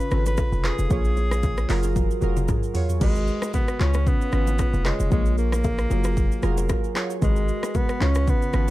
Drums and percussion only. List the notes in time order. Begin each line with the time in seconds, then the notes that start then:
0.00 shaker
0.11 cross-stick, shaker
0.26 low bongo, shaker
0.37 kick, cross-stick, high bongo, shaker
0.52 shaker
0.64 cross-stick, clap, shaker
0.79 shaker
0.90 kick, low conga, shaker
1.05 shaker
1.17 low bongo, shaker
1.31 cross-stick, low bongo, shaker
1.43 kick, high bongo, low conga, shaker
1.58 cross-stick, shaker
1.69 clap, open hi-hat, low bongo, shaker
1.83 high bongo, shaker
1.96 kick, high tom, low conga, shaker
2.11 shaker
2.22 mid tom, shaker
2.37 mid tom, low bongo, shaker
2.48 kick, mid tom, high bongo, shaker
2.63 shaker
2.75 floor tom, open hi-hat, shaker
2.89 floor tom, shaker
3.01 kick, crash, low conga, shaker
3.15 shaker
3.27 shaker
3.42 cross-stick, low bongo, shaker
3.54 kick, high bongo, low conga, shaker
3.68 cross-stick, shaker
3.80 clap, low bongo, shaker
3.94 cross-stick, high bongo, shaker
4.07 kick, low conga, shaker
4.21 shaker
4.32 cross-stick, shaker
4.47 low bongo, shaker
4.59 kick, cross-stick, high bongo, shaker
4.73 shaker
4.85 cross-stick, clap, shaker
5.00 shaker
5.12 kick, low conga, shaker
5.26 shaker
5.38 shaker
5.52 cross-stick, low bongo, shaker
5.64 kick, high bongo, low conga, shaker
5.78 cross-stick, shaker
5.91 low bongo, shaker
6.04 cross-stick, high bongo, shaker
6.17 kick, low conga, shaker
6.32 shaker
6.43 cross-stick, shaker
6.58 low bongo, shaker
6.69 kick, cross-stick, high bongo, shaker
6.84 shaker
6.96 cross-stick, clap, shaker
7.10 shaker
7.22 kick, low conga, shaker
7.36 shaker
7.48 shaker
7.63 cross-stick, low bongo, shaker
7.75 kick, high bongo, low conga, shaker
7.89 cross-stick, shaker
8.01 clap, low bongo, shaker
8.15 cross-stick, high bongo, shaker
8.28 kick, low conga, shaker
8.42 shaker
8.53 cross-stick, shaker